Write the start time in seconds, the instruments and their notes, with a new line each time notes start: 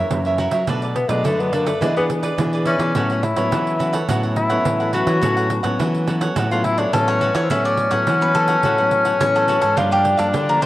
Already playing: cavaquinho A#4 C#5 E5
0.10 nylon-string guitar F#2 C#3 E3 A#3 C#4, pandeiro
0.25 cavaquinho A#4 C#5 E5, pandeiro
0.38 cavaquinho F#4 A#4 C#5 E5, pandeiro
0.51 nylon-string guitar F#3, cavaquinho A#4 C#5 E5, pandeiro
0.67 nylon-string guitar B2 F#3 A3 D4, cavaquinho D4 A4 B4 D5, pandeiro
0.82 cavaquinho A4 B4 D5, pandeiro
0.95 tenor saxophone B3, muted cavaquinho stroke, pandeiro
1.09 nylon-string guitar B2 F#3 A3 D4, tenor saxophone G#3, cavaquinho A4 B4 D5, pandeiro
1.24 nylon-string guitar F#2 D3, tenor saxophone A3, cavaquinho D4 A4 B4 D5, pandeiro
1.39 nylon-string guitar F#3 A3 D4, tenor saxophone B3, pandeiro
1.53 nylon-string guitar F#3 A3 D4, tenor saxophone A#3, cavaquinho D4 A4 B4 D5, pandeiro
1.66 tenor saxophone A3, cavaquinho A4 B4 D5, pandeiro
1.81 nylon-string guitar E3 B3 D4 G#4, tenor saxophone G#3, cavaquinho E4 G#4 B4 D5, pandeiro
1.96 nylon-string guitar B3 D4 G#4, tenor saxophone B3, cavaquinho G#4 B4 D5, pandeiro
2.10 muted cavaquinho stroke, pandeiro
2.23 cavaquinho G#4 B4 D5, pandeiro
2.38 nylon-string guitar B2 E3 B3 D4 G#4, pandeiro
2.53 cavaquinho G#4 B4 D5, pandeiro
2.65 tenor saxophone C#4, cavaquinho E4 G#4 B4 D5, pandeiro
2.79 nylon-string guitar E3, cavaquinho G#4 B4 D5, pandeiro
2.95 nylon-string guitar A2 F#3 B3 C#4, cavaquinho F#4 A4 C#5 F#5, pandeiro
3.10 cavaquinho A4 C#5 F#5, pandeiro
3.23 tenor saxophone E4, muted cavaquinho stroke, pandeiro
3.36 nylon-string guitar A2 F#3 B3 C#4, cavaquinho A4 C#5 F#5, pandeiro
3.51 nylon-string guitar E3, cavaquinho F#4 A4 C#5 F#5, pandeiro
3.67 pandeiro
3.79 nylon-string guitar F#3 B3 C#4, cavaquinho F#4 A4 C#5 F#5, pandeiro
3.93 cavaquinho A4 C#5 F#5, pandeiro
4.08 nylon-string guitar A2 F#3 B3 C#4, cavaquinho F#4 A4 C#5 F#5, pandeiro
4.23 cavaquinho A4 C#5 F#5, pandeiro
4.36 tenor saxophone E4, muted cavaquinho stroke, pandeiro
4.50 nylon-string guitar F#3 B3 C#4, cavaquinho A4 C#5 F#5, pandeiro
4.65 nylon-string guitar A2 E3, pandeiro
4.80 cavaquinho A4 C#5 F#5, pandeiro
4.93 nylon-string guitar F#3 B3 C#4, cavaquinho F#4 A4 C#5 F#5, tenor saxophone F#4, pandeiro
5.06 nylon-string guitar E3, cavaquinho A4 C#5 F#5, pandeiro
5.21 nylon-string guitar A2 F#3 B3 C#4, cavaquinho F#4 A4 C#5 F#5, pandeiro
5.37 cavaquinho A4 C#5 F#5, pandeiro
5.50 muted cavaquinho stroke, pandeiro
5.63 nylon-string guitar A2 F#3 B3 C#4, cavaquinho A4 C#5 F#5, pandeiro
5.79 nylon-string guitar E3, cavaquinho F#4 A4 C#5 F#5, pandeiro
5.95 pandeiro
6.07 nylon-string guitar F#3 B3 C#4, cavaquinho F#4 A4 C#5 F#5, pandeiro
6.21 cavaquinho A4 C#5 F#5, pandeiro
6.36 nylon-string guitar A2, cavaquinho F#4 A4 C#5 F#5, pandeiro
6.51 nylon-string guitar F#3 B3 C#4, tenor saxophone F4, cavaquinho A4 C#5 F#5, pandeiro
6.64 tenor saxophone E4, muted cavaquinho stroke, pandeiro
6.78 tenor saxophone D4, cavaquinho A4 C#5 F#5, pandeiro
6.93 nylon-string guitar A2 E3 F#3 B3 C#4, tenor saxophone C#4, cavaquinho A4, pandeiro
7.08 cavaquinho A4 C#5 F#5, pandeiro
7.21 cavaquinho F#4 A4 C#5 F#5, pandeiro
7.35 nylon-string guitar E3, cavaquinho A4 C#5 F#5, pandeiro
7.43 tenor saxophone C4
7.50 nylon-string guitar A2 F#3 B3 C#4, tenor saxophone C#4, cavaquinho F#4 A4 C#5 E5 F#5, pandeiro
7.65 cavaquinho A4 C#5 D5 F#5, pandeiro
7.77 muted cavaquinho stroke, pandeiro
7.91 nylon-string guitar A2 F#3 B3 C#4, cavaquinho A4 C#5 F#5, pandeiro
8.07 nylon-string guitar E3, cavaquinho F#4 A4 C#5 F#5, pandeiro
8.21 nylon-string guitar F#3 B3 C#4, cavaquinho B4, pandeiro
8.35 nylon-string guitar F#3 B3 C#4, cavaquinho F#4 A4 C#5 F#5, pandeiro
8.48 cavaquinho A4 C#5 F#5, pandeiro
8.63 nylon-string guitar A2, cavaquinho F#4 A4 C#5 F#5, pandeiro
8.78 nylon-string guitar F#3 B3 C#4, cavaquinho A4 C#5 F#5, pandeiro
8.91 muted cavaquinho stroke, pandeiro
9.05 cavaquinho A4 C#5 F#5, pandeiro
9.20 nylon-string guitar A2 E3 F#3 B3 C#4, cavaquinho C#5, pandeiro
9.35 cavaquinho A4 C#5 F#5, pandeiro
9.48 cavaquinho F#4 A4 C#5 F#5, pandeiro
9.61 nylon-string guitar G#2, cavaquinho A4 C#5 F#5, pandeiro
9.77 nylon-string guitar G2 F3 A#3 D4, tenor saxophone D4, cavaquinho F4 G4 A#4 D5 F5, pandeiro
9.91 cavaquinho G4 A#4 D5 F5, pandeiro
10.04 muted cavaquinho stroke, pandeiro
10.17 nylon-string guitar G2 F3 A#3 D4, cavaquinho A4 A#4 D5 F5, pandeiro
10.33 nylon-string guitar D3, cavaquinho G4 A#4 D5 F5, pandeiro
10.49 nylon-string guitar F3 A#3 D4, cavaquinho A#4, pandeiro
10.61 nylon-string guitar F3 A#3 D4, cavaquinho G4 A#4 C5 D5 F5, pandeiro